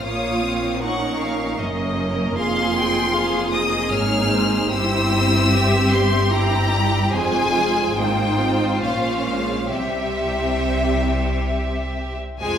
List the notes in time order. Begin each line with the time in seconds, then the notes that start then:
0.03 A#1 A#2 A#3 F4 C#5 F5 D#6
0.43 C4
0.81 C#4 D#4 A#4 F#5 C#6
1.21 F5
1.59 F#1 F#2 A#3 C#4 A#4 D#5
2.36 F1 F2 F4 G#4 F5 C6
2.76 G5
3.13 G#4 F5
3.52 D#5 D#6
3.91 G#1 G#2 D#4 C#5 F6
4.33 C5
4.71 G1 G2 C4 E4 G4 C5 E6
5.51 G4 E5
5.91 G4 C6
6.30 C4 E4 G4 G5 A#5
6.72 G3
7.13 F1 F2 G#3 F4 G#4 C5 G#5
7.55 G#4
7.97 G#1 G#2 A#3 D#4 F4 C5 G5
8.40 C4
8.82 A#1 A#2 C#4 F5
9.26 G#3
9.70 C2 C3 G3 C4 G4 E5
12.40 F1 F2 F3 G#3 F4 C5 G#5